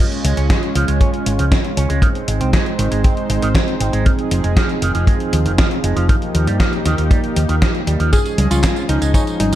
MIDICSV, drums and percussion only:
0, 0, Header, 1, 2, 480
1, 0, Start_track
1, 0, Tempo, 508475
1, 1913, Time_signature, 4, 2, 24, 8
1, 9016, End_track
2, 0, Start_track
2, 0, Title_t, "Drums"
2, 112, Note_on_c, 9, 42, 27
2, 207, Note_off_c, 9, 42, 0
2, 232, Note_on_c, 9, 42, 92
2, 326, Note_off_c, 9, 42, 0
2, 352, Note_on_c, 9, 42, 51
2, 446, Note_off_c, 9, 42, 0
2, 471, Note_on_c, 9, 36, 109
2, 472, Note_on_c, 9, 38, 107
2, 472, Note_on_c, 9, 42, 52
2, 565, Note_off_c, 9, 36, 0
2, 566, Note_off_c, 9, 38, 0
2, 566, Note_off_c, 9, 42, 0
2, 592, Note_on_c, 9, 42, 26
2, 687, Note_off_c, 9, 42, 0
2, 712, Note_on_c, 9, 42, 92
2, 807, Note_off_c, 9, 42, 0
2, 832, Note_on_c, 9, 42, 52
2, 926, Note_off_c, 9, 42, 0
2, 951, Note_on_c, 9, 36, 109
2, 952, Note_on_c, 9, 42, 53
2, 1045, Note_off_c, 9, 36, 0
2, 1047, Note_off_c, 9, 42, 0
2, 1073, Note_on_c, 9, 42, 26
2, 1167, Note_off_c, 9, 42, 0
2, 1193, Note_on_c, 9, 42, 90
2, 1287, Note_off_c, 9, 42, 0
2, 1313, Note_on_c, 9, 42, 54
2, 1407, Note_off_c, 9, 42, 0
2, 1431, Note_on_c, 9, 36, 119
2, 1433, Note_on_c, 9, 38, 112
2, 1433, Note_on_c, 9, 42, 52
2, 1526, Note_off_c, 9, 36, 0
2, 1527, Note_off_c, 9, 38, 0
2, 1527, Note_off_c, 9, 42, 0
2, 1553, Note_on_c, 9, 42, 26
2, 1648, Note_off_c, 9, 42, 0
2, 1673, Note_on_c, 9, 42, 92
2, 1767, Note_off_c, 9, 42, 0
2, 1793, Note_on_c, 9, 42, 52
2, 1887, Note_off_c, 9, 42, 0
2, 1907, Note_on_c, 9, 36, 117
2, 1912, Note_on_c, 9, 42, 52
2, 2002, Note_off_c, 9, 36, 0
2, 2007, Note_off_c, 9, 42, 0
2, 2033, Note_on_c, 9, 42, 27
2, 2127, Note_off_c, 9, 42, 0
2, 2152, Note_on_c, 9, 42, 88
2, 2247, Note_off_c, 9, 42, 0
2, 2273, Note_on_c, 9, 42, 50
2, 2367, Note_off_c, 9, 42, 0
2, 2390, Note_on_c, 9, 36, 111
2, 2393, Note_on_c, 9, 38, 116
2, 2393, Note_on_c, 9, 42, 51
2, 2485, Note_off_c, 9, 36, 0
2, 2487, Note_off_c, 9, 38, 0
2, 2487, Note_off_c, 9, 42, 0
2, 2513, Note_on_c, 9, 42, 26
2, 2608, Note_off_c, 9, 42, 0
2, 2633, Note_on_c, 9, 42, 86
2, 2728, Note_off_c, 9, 42, 0
2, 2753, Note_on_c, 9, 42, 50
2, 2848, Note_off_c, 9, 42, 0
2, 2873, Note_on_c, 9, 42, 51
2, 2874, Note_on_c, 9, 36, 121
2, 2967, Note_off_c, 9, 42, 0
2, 2969, Note_off_c, 9, 36, 0
2, 2993, Note_on_c, 9, 42, 25
2, 3088, Note_off_c, 9, 42, 0
2, 3113, Note_on_c, 9, 42, 86
2, 3207, Note_off_c, 9, 42, 0
2, 3232, Note_on_c, 9, 42, 52
2, 3327, Note_off_c, 9, 42, 0
2, 3348, Note_on_c, 9, 36, 114
2, 3353, Note_on_c, 9, 38, 116
2, 3353, Note_on_c, 9, 42, 50
2, 3442, Note_off_c, 9, 36, 0
2, 3447, Note_off_c, 9, 38, 0
2, 3447, Note_off_c, 9, 42, 0
2, 3472, Note_on_c, 9, 42, 25
2, 3567, Note_off_c, 9, 42, 0
2, 3592, Note_on_c, 9, 42, 90
2, 3686, Note_off_c, 9, 42, 0
2, 3712, Note_on_c, 9, 42, 50
2, 3807, Note_off_c, 9, 42, 0
2, 3832, Note_on_c, 9, 42, 50
2, 3835, Note_on_c, 9, 36, 118
2, 3927, Note_off_c, 9, 42, 0
2, 3929, Note_off_c, 9, 36, 0
2, 3952, Note_on_c, 9, 42, 25
2, 4046, Note_off_c, 9, 42, 0
2, 4072, Note_on_c, 9, 42, 84
2, 4166, Note_off_c, 9, 42, 0
2, 4192, Note_on_c, 9, 42, 48
2, 4286, Note_off_c, 9, 42, 0
2, 4310, Note_on_c, 9, 36, 124
2, 4312, Note_on_c, 9, 38, 118
2, 4312, Note_on_c, 9, 42, 49
2, 4404, Note_off_c, 9, 36, 0
2, 4406, Note_off_c, 9, 38, 0
2, 4406, Note_off_c, 9, 42, 0
2, 4431, Note_on_c, 9, 42, 26
2, 4526, Note_off_c, 9, 42, 0
2, 4551, Note_on_c, 9, 42, 86
2, 4646, Note_off_c, 9, 42, 0
2, 4671, Note_on_c, 9, 42, 48
2, 4766, Note_off_c, 9, 42, 0
2, 4788, Note_on_c, 9, 36, 112
2, 4792, Note_on_c, 9, 42, 49
2, 4883, Note_off_c, 9, 36, 0
2, 4886, Note_off_c, 9, 42, 0
2, 4912, Note_on_c, 9, 42, 24
2, 5006, Note_off_c, 9, 42, 0
2, 5031, Note_on_c, 9, 42, 85
2, 5126, Note_off_c, 9, 42, 0
2, 5151, Note_on_c, 9, 42, 49
2, 5246, Note_off_c, 9, 42, 0
2, 5271, Note_on_c, 9, 38, 117
2, 5271, Note_on_c, 9, 42, 50
2, 5276, Note_on_c, 9, 36, 127
2, 5366, Note_off_c, 9, 38, 0
2, 5366, Note_off_c, 9, 42, 0
2, 5371, Note_off_c, 9, 36, 0
2, 5392, Note_on_c, 9, 42, 24
2, 5486, Note_off_c, 9, 42, 0
2, 5512, Note_on_c, 9, 42, 87
2, 5606, Note_off_c, 9, 42, 0
2, 5632, Note_on_c, 9, 42, 49
2, 5726, Note_off_c, 9, 42, 0
2, 5751, Note_on_c, 9, 36, 120
2, 5752, Note_on_c, 9, 42, 48
2, 5846, Note_off_c, 9, 36, 0
2, 5846, Note_off_c, 9, 42, 0
2, 5872, Note_on_c, 9, 42, 25
2, 5966, Note_off_c, 9, 42, 0
2, 5992, Note_on_c, 9, 42, 85
2, 6086, Note_off_c, 9, 42, 0
2, 6112, Note_on_c, 9, 42, 48
2, 6206, Note_off_c, 9, 42, 0
2, 6229, Note_on_c, 9, 36, 121
2, 6232, Note_on_c, 9, 38, 118
2, 6232, Note_on_c, 9, 42, 47
2, 6323, Note_off_c, 9, 36, 0
2, 6326, Note_off_c, 9, 38, 0
2, 6326, Note_off_c, 9, 42, 0
2, 6352, Note_on_c, 9, 42, 25
2, 6446, Note_off_c, 9, 42, 0
2, 6471, Note_on_c, 9, 38, 37
2, 6471, Note_on_c, 9, 42, 84
2, 6566, Note_off_c, 9, 38, 0
2, 6566, Note_off_c, 9, 42, 0
2, 6591, Note_on_c, 9, 42, 48
2, 6686, Note_off_c, 9, 42, 0
2, 6710, Note_on_c, 9, 36, 121
2, 6711, Note_on_c, 9, 42, 49
2, 6804, Note_off_c, 9, 36, 0
2, 6806, Note_off_c, 9, 42, 0
2, 6832, Note_on_c, 9, 42, 24
2, 6926, Note_off_c, 9, 42, 0
2, 6952, Note_on_c, 9, 42, 82
2, 7046, Note_off_c, 9, 42, 0
2, 7072, Note_on_c, 9, 42, 48
2, 7167, Note_off_c, 9, 42, 0
2, 7193, Note_on_c, 9, 38, 119
2, 7193, Note_on_c, 9, 42, 47
2, 7195, Note_on_c, 9, 36, 118
2, 7287, Note_off_c, 9, 38, 0
2, 7287, Note_off_c, 9, 42, 0
2, 7289, Note_off_c, 9, 36, 0
2, 7313, Note_on_c, 9, 42, 23
2, 7407, Note_off_c, 9, 42, 0
2, 7432, Note_on_c, 9, 42, 85
2, 7527, Note_off_c, 9, 42, 0
2, 7553, Note_on_c, 9, 42, 48
2, 7647, Note_off_c, 9, 42, 0
2, 7672, Note_on_c, 9, 42, 48
2, 7672, Note_on_c, 9, 54, 49
2, 7676, Note_on_c, 9, 36, 115
2, 7767, Note_off_c, 9, 42, 0
2, 7767, Note_off_c, 9, 54, 0
2, 7770, Note_off_c, 9, 36, 0
2, 7793, Note_on_c, 9, 42, 25
2, 7793, Note_on_c, 9, 54, 30
2, 7887, Note_off_c, 9, 42, 0
2, 7887, Note_off_c, 9, 54, 0
2, 7913, Note_on_c, 9, 42, 86
2, 7913, Note_on_c, 9, 63, 79
2, 8007, Note_off_c, 9, 42, 0
2, 8007, Note_off_c, 9, 63, 0
2, 8033, Note_on_c, 9, 42, 49
2, 8033, Note_on_c, 9, 54, 58
2, 8127, Note_off_c, 9, 42, 0
2, 8127, Note_off_c, 9, 54, 0
2, 8153, Note_on_c, 9, 38, 115
2, 8153, Note_on_c, 9, 39, 82
2, 8153, Note_on_c, 9, 42, 47
2, 8153, Note_on_c, 9, 54, 49
2, 8154, Note_on_c, 9, 36, 116
2, 8247, Note_off_c, 9, 38, 0
2, 8247, Note_off_c, 9, 39, 0
2, 8247, Note_off_c, 9, 42, 0
2, 8247, Note_off_c, 9, 54, 0
2, 8248, Note_off_c, 9, 36, 0
2, 8273, Note_on_c, 9, 42, 24
2, 8273, Note_on_c, 9, 54, 30
2, 8367, Note_off_c, 9, 42, 0
2, 8367, Note_off_c, 9, 54, 0
2, 8393, Note_on_c, 9, 42, 83
2, 8487, Note_off_c, 9, 42, 0
2, 8513, Note_on_c, 9, 42, 48
2, 8513, Note_on_c, 9, 54, 58
2, 8607, Note_off_c, 9, 42, 0
2, 8607, Note_off_c, 9, 54, 0
2, 8630, Note_on_c, 9, 36, 107
2, 8633, Note_on_c, 9, 42, 50
2, 8633, Note_on_c, 9, 54, 50
2, 8724, Note_off_c, 9, 36, 0
2, 8727, Note_off_c, 9, 42, 0
2, 8727, Note_off_c, 9, 54, 0
2, 8753, Note_on_c, 9, 42, 24
2, 8753, Note_on_c, 9, 54, 29
2, 8848, Note_off_c, 9, 42, 0
2, 8848, Note_off_c, 9, 54, 0
2, 8873, Note_on_c, 9, 42, 82
2, 8873, Note_on_c, 9, 63, 78
2, 8967, Note_off_c, 9, 42, 0
2, 8967, Note_off_c, 9, 63, 0
2, 9016, End_track
0, 0, End_of_file